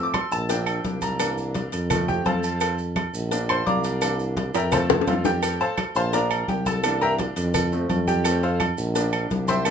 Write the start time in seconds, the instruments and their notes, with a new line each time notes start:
Already playing: upright piano F3 A3 C4
0.03 upright piano D6
0.14 upright piano C6, cowbell, high conga, low agogo, claves, maracas
0.31 tuba A#1, upright piano A5, high conga, maracas
0.49 upright piano F3 A#3 D4 G5, cowbell, high conga, low agogo, maracas
0.66 high conga, low agogo, claves, maracas
0.84 tuba C2, cowbell, high conga, maracas
1.02 upright piano A#5, cowbell, high conga, low agogo, maracas
1.19 upright piano E3 A#3 D4, cowbell, high conga, low agogo, claves, maracas
1.38 high conga, maracas
1.54 cowbell, high conga, low agogo, maracas
1.72 tuba F2, cowbell, high conga, low agogo, maracas
1.90 upright piano F3 A3 C4, cowbell, high conga, low conga, low agogo, claves, maracas
2.08 upright piano G4 G5, high conga, low conga, maracas
2.25 tuba F2, upright piano A4 C5 F5 A5, cowbell, high conga, low agogo, maracas
2.43 low agogo, maracas
2.61 cowbell, high conga, low agogo, claves, maracas
2.78 high conga, maracas
2.96 cowbell, high conga, low agogo, claves, maracas
3.13 tuba A#1, high conga, maracas
3.31 upright piano F3 A#3 D4, cowbell, high conga, low agogo, maracas
3.49 upright piano C5 C6, high conga, low agogo, claves, maracas
3.66 tuba C2, upright piano D5 F5 A#5 D6, cowbell, high conga, maracas
3.84 cowbell, low agogo, maracas
4.02 upright piano E3 A#3 D4, cowbell, high conga, low agogo, claves, maracas
4.19 high conga, maracas
4.37 cowbell, high conga, low agogo, maracas
4.54 tuba F2, upright piano A#4 E5 G5 A#5, cowbell, high conga, high timbale, low agogo, maracas
4.72 upright piano F3 A3 C4 A4 C5 F5 A5, cowbell, high conga, low conga, low agogo, claves, maracas
4.89 high bongo, high conga, low conga, low timbale, maracas
5.01 high bongo
5.07 tuba F2, upright piano F4 A4 C5 F5, cowbell, high conga, low timbale, low agogo, maracas
5.13 low bongo
5.25 upright piano G4 G5, low bongo, high conga, low timbale, low agogo, maracas
5.43 cowbell, high conga, low agogo, claves, maracas
5.60 upright piano A4 C5 F5 A5, high conga, maracas
5.78 cowbell, high conga, low agogo, claves, maracas
5.95 tuba A#1, upright piano C5 F5 A5 C6, high conga, maracas
6.13 upright piano F3 A#3 D4 A#4 D5 F5 A#5, cowbell, high conga, low agogo, maracas
6.31 high conga, low agogo, claves, maracas
6.48 tuba C2, upright piano G4 G5, cowbell, high conga, maracas
6.66 upright piano A4 A5, cowbell, high conga, low agogo, maracas
6.84 upright piano E3 A#3 D4, cowbell, high conga, low agogo, claves, maracas
7.01 upright piano A#4 E5 G5 A#5, high conga, maracas
7.19 cowbell, high conga, low agogo, maracas
7.36 tuba F2, cowbell, high conga, low agogo, maracas
7.54 cowbell, high conga, low conga, low agogo, claves, maracas
7.72 upright piano F3 A3 C4, high conga, maracas
7.89 tuba F2, cowbell, high conga, low agogo, maracas
8.08 upright piano G4 G5, high conga, low agogo, maracas
8.24 upright piano F3 A3 C4, cowbell, low agogo, claves, maracas
8.43 upright piano F4 A4 C5 F5, high conga, maracas
8.60 cowbell, high conga, low agogo, claves, maracas
8.78 tuba A#1, high conga, maracas
8.95 upright piano F3 A#3 D4, cowbell, high conga, low agogo, maracas
9.13 high conga, low agogo, claves, maracas
9.30 tuba C2, cowbell, high conga, maracas
9.48 upright piano C5 E5 G5 C6, cowbell, high conga, low agogo, maracas
9.65 upright piano E3 A#3 D4, cowbell, high conga, low agogo, claves, maracas